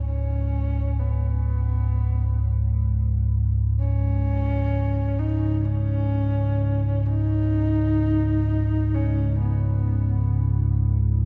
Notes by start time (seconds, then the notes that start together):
Already playing: C#2 G#2
0.05 C#4
0.99 B3
3.79 C#4
5.19 D#4
5.65 C#4
7.06 D#4
8.94 C#4
9.41 B3